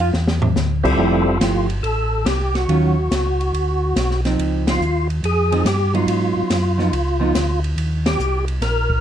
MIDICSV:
0, 0, Header, 1, 5, 480
1, 0, Start_track
1, 0, Tempo, 423729
1, 1116, Time_signature, 4, 2, 24, 8
1, 10201, End_track
2, 0, Start_track
2, 0, Title_t, "Tonewheel organ"
2, 0, Program_c, 0, 16
2, 946, Note_on_c, 0, 60, 68
2, 948, Note_on_c, 0, 55, 72
2, 951, Note_on_c, 0, 64, 73
2, 957, Note_on_c, 0, 65, 67
2, 958, Note_on_c, 0, 69, 81
2, 1430, Note_off_c, 0, 65, 0
2, 1444, Note_on_c, 0, 65, 81
2, 1558, Note_off_c, 0, 60, 0
2, 1559, Note_off_c, 0, 55, 0
2, 1561, Note_off_c, 0, 64, 0
2, 1565, Note_off_c, 0, 69, 0
2, 1889, Note_off_c, 0, 65, 0
2, 2074, Note_on_c, 0, 69, 85
2, 2556, Note_on_c, 0, 67, 73
2, 2570, Note_off_c, 0, 69, 0
2, 2890, Note_off_c, 0, 67, 0
2, 2895, Note_on_c, 0, 66, 71
2, 4765, Note_off_c, 0, 66, 0
2, 5320, Note_on_c, 0, 65, 90
2, 5750, Note_off_c, 0, 65, 0
2, 5950, Note_on_c, 0, 68, 99
2, 6416, Note_on_c, 0, 67, 82
2, 6429, Note_off_c, 0, 68, 0
2, 6741, Note_off_c, 0, 67, 0
2, 6744, Note_on_c, 0, 65, 81
2, 8607, Note_off_c, 0, 65, 0
2, 9129, Note_on_c, 0, 67, 86
2, 9572, Note_off_c, 0, 67, 0
2, 9767, Note_on_c, 0, 70, 97
2, 10201, Note_off_c, 0, 70, 0
2, 10201, End_track
3, 0, Start_track
3, 0, Title_t, "Hollow-body jazz guitar"
3, 0, Program_c, 1, 26
3, 2, Note_on_c, 1, 77, 102
3, 10, Note_on_c, 1, 65, 72
3, 95, Note_off_c, 1, 77, 0
3, 101, Note_off_c, 1, 65, 0
3, 1112, Note_on_c, 1, 53, 59
3, 1116, Note_on_c, 1, 57, 66
3, 1117, Note_on_c, 1, 64, 59
3, 1122, Note_on_c, 1, 67, 57
3, 1405, Note_off_c, 1, 53, 0
3, 1407, Note_off_c, 1, 57, 0
3, 1408, Note_off_c, 1, 64, 0
3, 1410, Note_off_c, 1, 67, 0
3, 1595, Note_on_c, 1, 53, 53
3, 1595, Note_on_c, 1, 57, 57
3, 1603, Note_on_c, 1, 64, 50
3, 1610, Note_on_c, 1, 67, 52
3, 1887, Note_off_c, 1, 53, 0
3, 1887, Note_off_c, 1, 57, 0
3, 1891, Note_off_c, 1, 64, 0
3, 1894, Note_off_c, 1, 67, 0
3, 3042, Note_on_c, 1, 51, 57
3, 3051, Note_on_c, 1, 54, 60
3, 3054, Note_on_c, 1, 61, 62
3, 3054, Note_on_c, 1, 65, 66
3, 3331, Note_off_c, 1, 51, 0
3, 3336, Note_off_c, 1, 54, 0
3, 3337, Note_off_c, 1, 61, 0
3, 3337, Note_off_c, 1, 65, 0
3, 4815, Note_on_c, 1, 53, 57
3, 4820, Note_on_c, 1, 60, 65
3, 4821, Note_on_c, 1, 63, 67
3, 5415, Note_off_c, 1, 53, 0
3, 5417, Note_off_c, 1, 60, 0
3, 5418, Note_off_c, 1, 63, 0
3, 6249, Note_on_c, 1, 53, 59
3, 6257, Note_on_c, 1, 60, 72
3, 6264, Note_on_c, 1, 63, 73
3, 6388, Note_off_c, 1, 53, 0
3, 6391, Note_off_c, 1, 60, 0
3, 6395, Note_off_c, 1, 63, 0
3, 6722, Note_on_c, 1, 54, 63
3, 6730, Note_on_c, 1, 59, 55
3, 6735, Note_on_c, 1, 63, 66
3, 7328, Note_off_c, 1, 54, 0
3, 7332, Note_off_c, 1, 59, 0
3, 7335, Note_off_c, 1, 63, 0
3, 7680, Note_on_c, 1, 53, 60
3, 7689, Note_on_c, 1, 59, 56
3, 7694, Note_on_c, 1, 63, 61
3, 7823, Note_off_c, 1, 53, 0
3, 7827, Note_off_c, 1, 59, 0
3, 7830, Note_off_c, 1, 63, 0
3, 8153, Note_on_c, 1, 53, 71
3, 8163, Note_on_c, 1, 59, 75
3, 8168, Note_on_c, 1, 63, 78
3, 8299, Note_off_c, 1, 53, 0
3, 8304, Note_off_c, 1, 59, 0
3, 8307, Note_off_c, 1, 63, 0
3, 10201, End_track
4, 0, Start_track
4, 0, Title_t, "Tonewheel organ"
4, 0, Program_c, 2, 16
4, 0, Note_on_c, 2, 41, 80
4, 133, Note_off_c, 2, 41, 0
4, 149, Note_on_c, 2, 40, 95
4, 618, Note_off_c, 2, 40, 0
4, 630, Note_on_c, 2, 38, 93
4, 1099, Note_off_c, 2, 38, 0
4, 1109, Note_on_c, 2, 29, 77
4, 1578, Note_off_c, 2, 29, 0
4, 1585, Note_on_c, 2, 31, 73
4, 2057, Note_off_c, 2, 31, 0
4, 2066, Note_on_c, 2, 33, 76
4, 2537, Note_off_c, 2, 33, 0
4, 2548, Note_on_c, 2, 36, 78
4, 3019, Note_off_c, 2, 36, 0
4, 3035, Note_on_c, 2, 39, 75
4, 3503, Note_off_c, 2, 39, 0
4, 3521, Note_on_c, 2, 37, 84
4, 3986, Note_off_c, 2, 37, 0
4, 3991, Note_on_c, 2, 38, 77
4, 4461, Note_off_c, 2, 38, 0
4, 4484, Note_on_c, 2, 35, 84
4, 4948, Note_off_c, 2, 35, 0
4, 4964, Note_on_c, 2, 37, 74
4, 5428, Note_off_c, 2, 37, 0
4, 5440, Note_on_c, 2, 39, 70
4, 5906, Note_off_c, 2, 39, 0
4, 5924, Note_on_c, 2, 41, 76
4, 6388, Note_off_c, 2, 41, 0
4, 6398, Note_on_c, 2, 43, 93
4, 6865, Note_off_c, 2, 43, 0
4, 6876, Note_on_c, 2, 44, 74
4, 7179, Note_off_c, 2, 44, 0
4, 7203, Note_on_c, 2, 44, 34
4, 7282, Note_off_c, 2, 44, 0
4, 7361, Note_on_c, 2, 42, 74
4, 7826, Note_off_c, 2, 42, 0
4, 7838, Note_on_c, 2, 37, 81
4, 8304, Note_off_c, 2, 37, 0
4, 8322, Note_on_c, 2, 38, 89
4, 8786, Note_off_c, 2, 38, 0
4, 8795, Note_on_c, 2, 39, 80
4, 9262, Note_off_c, 2, 39, 0
4, 9274, Note_on_c, 2, 36, 72
4, 9741, Note_off_c, 2, 36, 0
4, 9752, Note_on_c, 2, 34, 76
4, 10201, Note_off_c, 2, 34, 0
4, 10201, End_track
5, 0, Start_track
5, 0, Title_t, "Drums"
5, 152, Note_on_c, 9, 38, 48
5, 265, Note_off_c, 9, 38, 0
5, 312, Note_on_c, 9, 38, 71
5, 425, Note_off_c, 9, 38, 0
5, 474, Note_on_c, 9, 43, 93
5, 587, Note_off_c, 9, 43, 0
5, 634, Note_on_c, 9, 38, 60
5, 637, Note_on_c, 9, 44, 59
5, 748, Note_off_c, 9, 38, 0
5, 750, Note_off_c, 9, 44, 0
5, 959, Note_on_c, 9, 36, 71
5, 963, Note_on_c, 9, 49, 71
5, 1072, Note_off_c, 9, 36, 0
5, 1076, Note_off_c, 9, 49, 0
5, 1596, Note_on_c, 9, 38, 60
5, 1598, Note_on_c, 9, 44, 65
5, 1598, Note_on_c, 9, 51, 71
5, 1710, Note_off_c, 9, 38, 0
5, 1712, Note_off_c, 9, 44, 0
5, 1712, Note_off_c, 9, 51, 0
5, 1921, Note_on_c, 9, 51, 44
5, 2034, Note_off_c, 9, 51, 0
5, 2082, Note_on_c, 9, 51, 48
5, 2196, Note_off_c, 9, 51, 0
5, 2561, Note_on_c, 9, 38, 66
5, 2564, Note_on_c, 9, 44, 52
5, 2564, Note_on_c, 9, 51, 69
5, 2675, Note_off_c, 9, 38, 0
5, 2677, Note_off_c, 9, 44, 0
5, 2677, Note_off_c, 9, 51, 0
5, 2888, Note_on_c, 9, 38, 40
5, 2890, Note_on_c, 9, 51, 37
5, 3001, Note_off_c, 9, 38, 0
5, 3003, Note_off_c, 9, 51, 0
5, 3047, Note_on_c, 9, 51, 48
5, 3161, Note_off_c, 9, 51, 0
5, 3528, Note_on_c, 9, 38, 61
5, 3530, Note_on_c, 9, 44, 54
5, 3530, Note_on_c, 9, 51, 62
5, 3641, Note_off_c, 9, 38, 0
5, 3643, Note_off_c, 9, 44, 0
5, 3643, Note_off_c, 9, 51, 0
5, 3858, Note_on_c, 9, 51, 39
5, 3971, Note_off_c, 9, 51, 0
5, 4015, Note_on_c, 9, 51, 47
5, 4128, Note_off_c, 9, 51, 0
5, 4489, Note_on_c, 9, 38, 60
5, 4491, Note_on_c, 9, 44, 49
5, 4491, Note_on_c, 9, 51, 66
5, 4602, Note_off_c, 9, 38, 0
5, 4604, Note_off_c, 9, 44, 0
5, 4604, Note_off_c, 9, 51, 0
5, 4652, Note_on_c, 9, 38, 27
5, 4765, Note_off_c, 9, 38, 0
5, 4814, Note_on_c, 9, 51, 41
5, 4815, Note_on_c, 9, 38, 37
5, 4927, Note_off_c, 9, 51, 0
5, 4928, Note_off_c, 9, 38, 0
5, 4977, Note_on_c, 9, 51, 53
5, 5090, Note_off_c, 9, 51, 0
5, 5294, Note_on_c, 9, 38, 72
5, 5296, Note_on_c, 9, 51, 66
5, 5407, Note_off_c, 9, 38, 0
5, 5410, Note_off_c, 9, 51, 0
5, 5457, Note_on_c, 9, 44, 50
5, 5570, Note_off_c, 9, 44, 0
5, 5777, Note_on_c, 9, 51, 40
5, 5891, Note_off_c, 9, 51, 0
5, 5933, Note_on_c, 9, 51, 57
5, 6047, Note_off_c, 9, 51, 0
5, 6255, Note_on_c, 9, 51, 49
5, 6368, Note_off_c, 9, 51, 0
5, 6407, Note_on_c, 9, 38, 65
5, 6410, Note_on_c, 9, 44, 62
5, 6410, Note_on_c, 9, 51, 64
5, 6521, Note_off_c, 9, 38, 0
5, 6523, Note_off_c, 9, 44, 0
5, 6523, Note_off_c, 9, 51, 0
5, 6734, Note_on_c, 9, 51, 39
5, 6848, Note_off_c, 9, 51, 0
5, 6887, Note_on_c, 9, 51, 62
5, 7000, Note_off_c, 9, 51, 0
5, 7366, Note_on_c, 9, 38, 62
5, 7368, Note_on_c, 9, 44, 53
5, 7368, Note_on_c, 9, 51, 68
5, 7479, Note_off_c, 9, 38, 0
5, 7482, Note_off_c, 9, 44, 0
5, 7482, Note_off_c, 9, 51, 0
5, 7692, Note_on_c, 9, 38, 26
5, 7805, Note_off_c, 9, 38, 0
5, 7851, Note_on_c, 9, 51, 55
5, 7964, Note_off_c, 9, 51, 0
5, 8326, Note_on_c, 9, 38, 68
5, 8328, Note_on_c, 9, 44, 61
5, 8328, Note_on_c, 9, 51, 63
5, 8439, Note_off_c, 9, 38, 0
5, 8441, Note_off_c, 9, 44, 0
5, 8441, Note_off_c, 9, 51, 0
5, 8655, Note_on_c, 9, 51, 41
5, 8769, Note_off_c, 9, 51, 0
5, 8810, Note_on_c, 9, 51, 57
5, 8924, Note_off_c, 9, 51, 0
5, 9129, Note_on_c, 9, 38, 73
5, 9132, Note_on_c, 9, 51, 69
5, 9243, Note_off_c, 9, 38, 0
5, 9245, Note_off_c, 9, 51, 0
5, 9285, Note_on_c, 9, 44, 62
5, 9398, Note_off_c, 9, 44, 0
5, 9605, Note_on_c, 9, 51, 43
5, 9719, Note_off_c, 9, 51, 0
5, 9761, Note_on_c, 9, 38, 33
5, 9763, Note_on_c, 9, 51, 58
5, 9874, Note_off_c, 9, 38, 0
5, 9877, Note_off_c, 9, 51, 0
5, 10081, Note_on_c, 9, 36, 56
5, 10194, Note_off_c, 9, 36, 0
5, 10201, End_track
0, 0, End_of_file